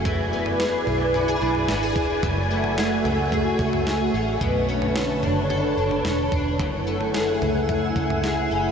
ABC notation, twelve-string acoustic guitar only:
X:1
M:4/4
L:1/16
Q:1/4=110
K:F#m
V:1 name="Twelve-string acoustic guitar"
E,2 B,2 G2 D2 F G D2 F G D2 | F,,2 A,2 G2 C2 G2 C2 G2 C2 | B,,2 C2 A2 D2 A2 D2 A2 D2 | F,,2 A,2 G2 C2 G2 C2 G2 C2 |]